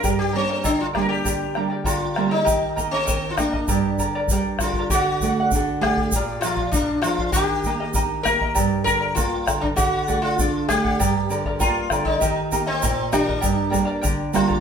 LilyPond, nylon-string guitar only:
\new Staff \with { instrumentName = "Nylon-string guitar" } { \clef bass \time 2/4 \key g \minor \tempo 4 = 99 g,8 <g bes d'>8 d8 <g bes d'>8 | d8 <g bes d'>8 d8 <g bes d'>8 | ees8 bes8 ees8 bes8 | g,8 d8 g8 d8 |
d8 a8 d'8 a8 | bes,8 f8 bes,8 f8 | ees8 bes8 ees'8 bes8 | g,8 d8 bes8 d8 |
d8 a8 d'8 a8 | g,8 d8 bes8 d8 | ees8 <bes ees' g'>8 bes,8 <ees bes g'>8 | g,8 <g bes d'>8 d8 <g bes d'>8 | }